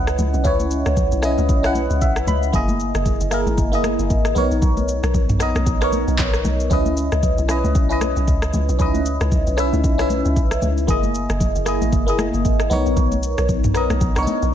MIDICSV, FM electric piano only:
0, 0, Header, 1, 2, 480
1, 0, Start_track
1, 0, Tempo, 521739
1, 410, Time_signature, 4, 2, 24, 8
1, 13379, End_track
2, 0, Start_track
2, 0, Title_t, "FM electric piano"
2, 0, Program_c, 0, 5
2, 0, Control_c, 0, 64, 127
2, 0, Note_on_c, 0, 61, 89
2, 0, Note_on_c, 0, 64, 81
2, 0, Note_on_c, 0, 71, 82
2, 0, Note_on_c, 0, 75, 95
2, 0, Note_on_c, 0, 78, 98
2, 250, Note_off_c, 0, 61, 0
2, 254, Note_off_c, 0, 64, 0
2, 259, Note_off_c, 0, 71, 0
2, 264, Note_off_c, 0, 78, 0
2, 402, Note_on_c, 0, 61, 89
2, 411, Note_on_c, 0, 64, 78
2, 421, Note_on_c, 0, 71, 79
2, 430, Note_on_c, 0, 73, 93
2, 998, Note_off_c, 0, 61, 0
2, 1002, Note_off_c, 0, 64, 0
2, 1007, Note_off_c, 0, 71, 0
2, 1012, Note_off_c, 0, 73, 0
2, 1122, Note_on_c, 0, 61, 84
2, 1131, Note_on_c, 0, 64, 83
2, 1141, Note_on_c, 0, 71, 78
2, 1151, Note_off_c, 0, 75, 0
2, 1151, Note_on_c, 0, 75, 97
2, 1422, Note_off_c, 0, 61, 0
2, 1427, Note_off_c, 0, 64, 0
2, 1432, Note_off_c, 0, 71, 0
2, 1436, Note_off_c, 0, 75, 0
2, 1500, Note_on_c, 0, 61, 90
2, 1510, Note_on_c, 0, 64, 82
2, 1519, Note_on_c, 0, 71, 80
2, 1529, Note_on_c, 0, 78, 93
2, 1856, Note_on_c, 0, 76, 75
2, 2077, Note_off_c, 0, 76, 0
2, 2096, Note_on_c, 0, 83, 73
2, 2169, Note_off_c, 0, 61, 0
2, 2174, Note_off_c, 0, 64, 0
2, 2179, Note_off_c, 0, 71, 0
2, 2184, Note_off_c, 0, 78, 0
2, 2317, Note_off_c, 0, 83, 0
2, 2323, Note_on_c, 0, 58, 87
2, 2333, Note_on_c, 0, 64, 80
2, 2341, Control_c, 0, 64, 0
2, 2343, Note_on_c, 0, 68, 82
2, 2352, Note_on_c, 0, 75, 95
2, 2484, Control_c, 0, 64, 127
2, 2918, Note_off_c, 0, 58, 0
2, 2923, Note_off_c, 0, 64, 0
2, 2928, Note_off_c, 0, 68, 0
2, 2932, Note_off_c, 0, 75, 0
2, 3043, Note_on_c, 0, 58, 86
2, 3053, Note_on_c, 0, 64, 78
2, 3062, Note_on_c, 0, 68, 78
2, 3072, Note_on_c, 0, 70, 97
2, 3342, Note_off_c, 0, 58, 0
2, 3347, Note_off_c, 0, 64, 0
2, 3352, Note_off_c, 0, 68, 0
2, 3357, Note_off_c, 0, 70, 0
2, 3419, Note_on_c, 0, 58, 86
2, 3429, Note_on_c, 0, 64, 81
2, 3439, Note_on_c, 0, 68, 76
2, 3449, Note_on_c, 0, 75, 99
2, 4000, Note_on_c, 0, 59, 89
2, 4005, Note_off_c, 0, 58, 0
2, 4009, Note_on_c, 0, 63, 82
2, 4010, Note_off_c, 0, 64, 0
2, 4015, Note_off_c, 0, 68, 0
2, 4019, Note_on_c, 0, 70, 83
2, 4020, Note_off_c, 0, 75, 0
2, 4022, Control_c, 0, 64, 0
2, 4028, Note_on_c, 0, 73, 96
2, 4185, Control_c, 0, 64, 127
2, 4781, Note_off_c, 0, 59, 0
2, 4786, Note_off_c, 0, 63, 0
2, 4791, Note_off_c, 0, 70, 0
2, 4795, Note_off_c, 0, 73, 0
2, 4961, Note_on_c, 0, 59, 85
2, 4970, Note_on_c, 0, 63, 77
2, 4981, Note_on_c, 0, 70, 77
2, 4990, Note_on_c, 0, 75, 95
2, 5262, Note_off_c, 0, 59, 0
2, 5266, Note_off_c, 0, 63, 0
2, 5271, Note_off_c, 0, 70, 0
2, 5276, Note_off_c, 0, 75, 0
2, 5343, Note_on_c, 0, 59, 86
2, 5352, Note_on_c, 0, 63, 80
2, 5363, Note_on_c, 0, 70, 83
2, 5372, Note_on_c, 0, 73, 96
2, 6011, Note_off_c, 0, 59, 0
2, 6016, Note_off_c, 0, 63, 0
2, 6021, Note_off_c, 0, 70, 0
2, 6025, Note_off_c, 0, 73, 0
2, 6163, Note_on_c, 0, 61, 84
2, 6172, Note_on_c, 0, 64, 78
2, 6182, Control_c, 0, 64, 0
2, 6182, Note_on_c, 0, 71, 81
2, 6192, Note_on_c, 0, 75, 97
2, 6354, Control_c, 0, 64, 127
2, 6758, Note_off_c, 0, 61, 0
2, 6763, Note_off_c, 0, 64, 0
2, 6768, Note_off_c, 0, 71, 0
2, 6773, Note_off_c, 0, 75, 0
2, 6882, Note_on_c, 0, 61, 84
2, 6892, Note_on_c, 0, 64, 79
2, 6901, Note_on_c, 0, 71, 79
2, 6911, Note_on_c, 0, 75, 94
2, 7182, Note_off_c, 0, 61, 0
2, 7187, Note_off_c, 0, 64, 0
2, 7192, Note_off_c, 0, 71, 0
2, 7196, Note_off_c, 0, 75, 0
2, 7260, Note_on_c, 0, 61, 91
2, 7270, Note_on_c, 0, 64, 81
2, 7280, Note_on_c, 0, 71, 84
2, 7290, Note_on_c, 0, 75, 98
2, 7929, Note_off_c, 0, 61, 0
2, 7935, Note_off_c, 0, 64, 0
2, 7939, Note_off_c, 0, 71, 0
2, 7944, Note_off_c, 0, 75, 0
2, 8083, Note_on_c, 0, 61, 87
2, 8093, Note_on_c, 0, 63, 66
2, 8102, Note_on_c, 0, 71, 77
2, 8112, Note_on_c, 0, 75, 97
2, 8150, Note_on_c, 0, 64, 78
2, 8159, Note_off_c, 0, 63, 0
2, 8678, Note_off_c, 0, 61, 0
2, 8688, Note_off_c, 0, 71, 0
2, 8693, Note_off_c, 0, 75, 0
2, 8712, Note_off_c, 0, 64, 0
2, 8802, Note_on_c, 0, 61, 85
2, 8811, Note_on_c, 0, 64, 78
2, 8821, Note_on_c, 0, 71, 80
2, 8832, Note_on_c, 0, 76, 100
2, 9102, Note_off_c, 0, 61, 0
2, 9107, Note_off_c, 0, 64, 0
2, 9112, Note_off_c, 0, 71, 0
2, 9117, Note_off_c, 0, 76, 0
2, 9182, Note_on_c, 0, 61, 86
2, 9191, Note_on_c, 0, 64, 82
2, 9202, Note_on_c, 0, 71, 79
2, 9211, Note_on_c, 0, 76, 99
2, 9850, Note_off_c, 0, 61, 0
2, 9855, Note_off_c, 0, 64, 0
2, 9860, Note_off_c, 0, 71, 0
2, 9865, Note_off_c, 0, 76, 0
2, 10002, Note_on_c, 0, 58, 85
2, 10012, Note_on_c, 0, 64, 78
2, 10022, Control_c, 0, 64, 0
2, 10022, Note_on_c, 0, 68, 82
2, 10032, Note_on_c, 0, 75, 99
2, 10175, Control_c, 0, 64, 127
2, 10598, Note_off_c, 0, 58, 0
2, 10603, Note_off_c, 0, 64, 0
2, 10608, Note_off_c, 0, 68, 0
2, 10613, Note_off_c, 0, 75, 0
2, 10722, Note_on_c, 0, 58, 82
2, 10731, Note_on_c, 0, 64, 83
2, 10740, Note_on_c, 0, 68, 77
2, 10750, Note_on_c, 0, 75, 93
2, 11022, Note_off_c, 0, 58, 0
2, 11026, Note_off_c, 0, 64, 0
2, 11031, Note_off_c, 0, 68, 0
2, 11036, Note_off_c, 0, 75, 0
2, 11099, Note_on_c, 0, 58, 87
2, 11110, Note_on_c, 0, 64, 81
2, 11119, Note_on_c, 0, 68, 83
2, 11128, Note_on_c, 0, 75, 94
2, 11681, Note_on_c, 0, 59, 94
2, 11685, Note_off_c, 0, 58, 0
2, 11691, Note_off_c, 0, 64, 0
2, 11691, Note_on_c, 0, 63, 81
2, 11695, Note_off_c, 0, 68, 0
2, 11700, Note_off_c, 0, 75, 0
2, 11700, Note_on_c, 0, 70, 81
2, 11703, Control_c, 0, 64, 0
2, 11710, Note_on_c, 0, 73, 101
2, 11850, Control_c, 0, 64, 127
2, 12462, Note_off_c, 0, 59, 0
2, 12467, Note_off_c, 0, 63, 0
2, 12471, Note_off_c, 0, 70, 0
2, 12476, Note_off_c, 0, 73, 0
2, 12641, Note_on_c, 0, 59, 89
2, 12651, Note_on_c, 0, 63, 76
2, 12660, Note_on_c, 0, 70, 77
2, 12669, Note_on_c, 0, 75, 91
2, 12941, Note_off_c, 0, 59, 0
2, 12946, Note_off_c, 0, 63, 0
2, 12951, Note_off_c, 0, 70, 0
2, 12956, Note_off_c, 0, 75, 0
2, 13020, Note_on_c, 0, 59, 87
2, 13030, Note_on_c, 0, 62, 63
2, 13041, Note_on_c, 0, 70, 80
2, 13050, Note_on_c, 0, 73, 94
2, 13078, Note_off_c, 0, 62, 0
2, 13087, Note_on_c, 0, 63, 79
2, 13379, Note_off_c, 0, 59, 0
2, 13379, Note_off_c, 0, 63, 0
2, 13379, Note_off_c, 0, 70, 0
2, 13379, Note_off_c, 0, 73, 0
2, 13379, End_track
0, 0, End_of_file